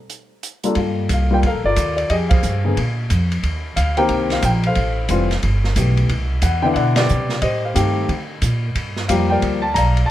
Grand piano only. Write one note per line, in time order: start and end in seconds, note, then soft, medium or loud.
0.64 0.75 G3 medium
0.64 0.75 A#3 medium
0.64 0.75 D4 medium
0.64 0.75 F4 medium
0.64 0.76 A4 medium
0.77 1.26 G3 soft
0.77 1.27 A#3 soft
0.77 1.27 F4 soft
0.77 1.27 A4 medium
1.14 1.33 F5 medium
1.31 1.42 G3 medium
1.31 1.42 A#3 medium
1.31 1.42 F4 medium
1.31 1.43 A#4 medium
1.31 1.39 G5 medium
1.46 2.07 A4 medium
1.46 1.64 A#4 medium
1.46 1.51 F5 medium
1.66 2.08 F4 medium
1.66 2.07 A#4 medium
1.66 1.95 D5 medium
1.97 2.09 D5 medium
2.10 2.73 G4 medium
2.10 2.29 G#4 medium
2.10 2.15 D#5 medium
2.29 2.64 G#4 soft
2.29 2.73 C5 medium
2.29 2.93 F5 medium
2.65 2.75 D3 medium
2.65 2.76 A#3 medium
2.65 2.76 B3 medium
2.65 2.76 G#4 medium
3.76 3.96 F5 medium
3.97 4.40 D#3 medium
3.97 4.41 A#3 medium
3.97 4.41 C4 medium
3.97 4.41 G4 medium
3.97 4.60 A#4 medium
3.97 4.60 C5 medium
3.97 4.31 G5 loud
4.33 4.43 F5 medium
4.45 4.50 G5 medium
4.67 5.95 A4 medium
4.67 5.40 C5 medium
4.67 5.95 F5 medium
5.09 5.28 E3 medium
5.09 5.29 G3 medium
5.09 5.29 C4 medium
5.09 5.29 F4 medium
5.76 6.09 E3 soft
5.76 6.09 A3 soft
5.76 6.10 B3 soft
5.76 6.10 G4 medium
6.43 6.64 F#5 medium
6.62 7.06 D3 medium
6.62 7.07 B3 medium
6.62 7.07 D4 medium
6.62 7.07 E4 medium
6.62 6.67 G5 medium
6.74 6.97 B4 medium
6.74 6.95 D5 medium
6.74 6.97 F#5 medium
6.97 7.40 G4 medium
6.97 7.40 B4 medium
6.97 7.39 D5 medium
7.42 7.74 G4 medium
7.42 7.64 C5 medium
7.42 7.64 D#5 medium
7.65 8.27 C5 soft
7.65 8.27 F5 medium
7.74 8.08 D#3 medium
7.74 8.09 A3 medium
7.74 8.09 C4 medium
7.74 8.09 G4 medium
9.08 9.60 F3 medium
9.08 9.60 G3 medium
9.08 9.60 A#3 medium
9.08 9.60 G4 medium
9.08 9.13 F5 medium
9.30 9.94 A#4 medium
9.30 9.77 D5 medium
9.30 9.61 G5 medium
9.62 9.76 A5 medium
9.74 10.09 D5 medium
9.74 10.08 F5 medium
9.74 10.10 A#5 medium
10.06 10.11 A5 medium